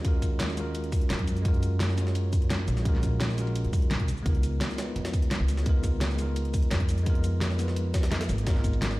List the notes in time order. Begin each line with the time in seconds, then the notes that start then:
Already playing: D#2 C#4 F4 F#4 A#4 C#5
0.00 G#3 C#4
0.05 F4 F#4 A#4, kick, closed hi-hat
0.22 kick, snare, closed hi-hat, cabasa
0.40 snare, closed hi-hat
0.49 snare
0.54 G#3 C#4 F4, closed hi-hat, cabasa
0.59 F#4 A#4
0.75 closed hi-hat
0.84 closed hi-hat
0.92 kick, closed hi-hat, open hi-hat, cabasa
1.01 closed hi-hat
1.10 F#2, snare, closed hi-hat
1.19 kick, closed hi-hat
1.28 closed hi-hat, cabasa
1.37 closed hi-hat, cabasa
1.42 G#3 C#4 F4, kick, closed hi-hat
1.47 F#4 A#4
1.54 closed hi-hat
1.63 closed hi-hat, cabasa
1.80 snare, closed hi-hat
1.89 snare
1.95 G#3 C#4 F4, snare, closed hi-hat, cabasa
2.00 F#4 C#5
2.07 snare
2.15 closed hi-hat
2.33 kick, closed hi-hat, cabasa
2.42 closed hi-hat
2.50 snare, closed hi-hat
2.59 snare
2.68 A#1, closed hi-hat, cabasa
2.77 snare, cabasa
2.82 G#3 C#4 F4, kick, closed hi-hat
2.87 F#4 A#4
2.94 snare
3.03 kick, snare, closed hi-hat, cabasa
3.20 snare, closed hi-hat
3.29 snare
3.35 G#3 C#4 F4, closed hi-hat, cabasa
3.40 F#4 A#4
3.47 closed hi-hat
3.55 closed hi-hat
3.65 F#2, closed hi-hat
3.73 kick, closed hi-hat, open hi-hat, cabasa
3.82 closed hi-hat
3.91 A#1, snare, closed hi-hat
4.00 kick, closed hi-hat
4.08 C#2, closed hi-hat, cabasa
4.17 cabasa
4.23 C#2 G#3 B3 D#4, kick, closed hi-hat
4.27 F4 A#4
4.35 closed hi-hat
4.43 closed hi-hat, cabasa
4.61 snare, closed hi-hat
4.70 snare
4.75 G#3 B3 D#4, snare, closed hi-hat, cabasa
4.80 F4 B4
4.96 F2, closed hi-hat
5.05 snare, closed hi-hat
5.13 kick, closed hi-hat, cabasa
5.22 C#2, closed hi-hat
5.31 snare, closed hi-hat
5.40 C#2, snare
5.48 closed hi-hat, cabasa
5.57 snare, cabasa
5.63 G#3 B3 D#4, kick, closed hi-hat
5.68 F4 A#4
5.83 kick, snare, closed hi-hat, cabasa
6.01 snare, closed hi-hat
6.10 snare
6.15 G#3 B3 D#4, closed hi-hat, cabasa
6.20 F4 A#4
6.36 closed hi-hat
6.45 closed hi-hat
6.54 kick, closed hi-hat, open hi-hat, cabasa
6.63 closed hi-hat
6.71 F2, snare, closed hi-hat
6.80 kick, closed hi-hat
6.89 closed hi-hat, cabasa
6.98 closed hi-hat, cabasa
7.03 G#3 B3 D#4, kick, closed hi-hat
7.08 F4 A#4
7.15 closed hi-hat
7.24 closed hi-hat, cabasa
7.41 snare, closed hi-hat
7.51 snare
7.56 G#3 B3 D#4, snare, closed hi-hat, cabasa
7.61 F4 B4
7.68 snare
7.76 closed hi-hat
7.94 kick, snare, closed hi-hat, cabasa
8.03 snare, closed hi-hat
8.11 snare, closed hi-hat
8.21 snare, closed hi-hat
8.29 G#1, snare, closed hi-hat, cabasa
8.38 closed hi-hat, cabasa
8.43 G#3 B3 D#4, kick, snare, closed hi-hat
8.48 F4 A#4
8.56 snare
8.64 kick, snare, closed hi-hat, cabasa
8.73 closed hi-hat
8.82 snare, closed hi-hat
8.91 snare, closed hi-hat